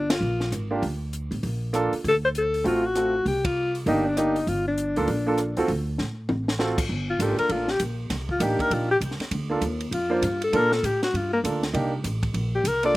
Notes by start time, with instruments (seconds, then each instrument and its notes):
Already playing: upright bass G1, alto saxophone D4
0.10 alto saxophone F4, snare, ride
0.21 upright bass A#1
0.40 snare
0.52 upright bass G#1, cross-stick, closed hi-hat
0.71 grand piano A#3 D4 F4 G4
0.82 upright bass D2, kick, open hi-hat
1.13 closed hi-hat
1.31 upright bass A1, open hi-hat
1.43 upright bass A#1, kick, open hi-hat
1.73 grand piano A#3 D4 F4 A4, cross-stick, closed hi-hat
1.93 muted upright bass stroke, open hi-hat
2.04 upright bass D2, alto saxophone A4, kick, open hi-hat
2.25 alto saxophone C5
2.35 alto saxophone A4, closed hi-hat
2.54 open hi-hat
2.64 upright bass A1, grand piano A3 C4 F4 F#4, alto saxophone F4, kick, open hi-hat
2.86 alto saxophone F#4
2.95 grand piano A3 C4 F4 F#4, cross-stick, closed hi-hat
3.25 upright bass C2, alto saxophone G4, kick, open hi-hat
3.45 alto saxophone F4, kick, ride
3.75 open hi-hat
3.86 upright bass G1, grand piano A#3 D4 D#4 G4, alto saxophone D#4, kick, open hi-hat
4.06 alto saxophone D4
4.17 grand piano A#3 D4 D#4 G4, alto saxophone D#4, cross-stick, closed hi-hat
4.36 open hi-hat
4.47 upright bass G1, alto saxophone F4, kick, open hi-hat
4.68 alto saxophone D4
4.78 closed hi-hat
4.96 upright bass D2, grand piano A#3 D4 F4 A4, open hi-hat
5.08 upright bass A#1, kick, open hi-hat
5.27 grand piano A#3 D4 F4 A4
5.38 cross-stick, closed hi-hat
5.57 upright bass D#2, grand piano C4 F4 F#4 A4, open hi-hat
5.68 upright bass D2, kick, open hi-hat
5.98 upright bass A2, snare
6.29 upright bass A1, high tom
6.48 snare
6.59 grand piano C4 F4 F#4 A4, snare
6.78 kick, crash
6.89 upright bass G1, kick
7.10 alto saxophone F4
7.19 upright bass G#1, grand piano A#3 D4 F4 A4, alto saxophone G4, kick, hi-hat pedal, ride
7.39 alto saxophone A#4, muted upright bass stroke, ride
7.49 upright bass A1, alto saxophone F4, kick, ride
7.68 alto saxophone G4, snare
7.79 upright bass A#1, kick, hi-hat pedal, ride
8.10 upright bass C2, kick, snare, ride
8.29 alto saxophone F4, kick
8.40 upright bass A1, grand piano A#3 D4 D#4 G4, alto saxophone G4, kick, hi-hat pedal, ride
8.59 alto saxophone A#4, muted upright bass stroke, kick, ride
8.71 upright bass A#1, alto saxophone F4, kick, ride
8.91 alto saxophone G4
9.00 upright bass C2, kick, hi-hat pedal, ride
9.11 snare
9.19 muted upright bass stroke, snare, ride
9.31 upright bass D2, kick, ride
9.50 grand piano A#3 D4 F4 A4
9.61 upright bass D#2, kick, hi-hat pedal, ride
9.80 ride
9.91 upright bass F2, alto saxophone F4, kick, ride
10.10 grand piano A#3 D4 F4 C5
10.22 upright bass G2, kick, hi-hat pedal, ride
10.42 alto saxophone A4, ride
10.53 upright bass A#2, grand piano A#3 D4 F4 A4, alto saxophone A#4, kick, ride
10.72 alto saxophone A4, snare
10.83 upright bass A2, alto saxophone G4, kick, hi-hat pedal, ride
11.03 alto saxophone F#4, snare, ride
11.14 upright bass G2, alto saxophone F4, kick, ride
11.33 alto saxophone A#3
11.44 upright bass D2, grand piano A#3 D4 F4 A4, kick, hi-hat pedal, ride
11.63 snare, ride
11.73 upright bass C2, grand piano A#3 D4 D#4 G4, kick, ride
12.04 upright bass A1, kick, hi-hat pedal, ride
12.23 kick, ride
12.34 upright bass A#1, kick, ride
12.55 alto saxophone G4
12.64 upright bass C2, alto saxophone A#4, kick, hi-hat pedal, ride
12.83 grand piano A#3 D4 F4 A4, alto saxophone D5, ride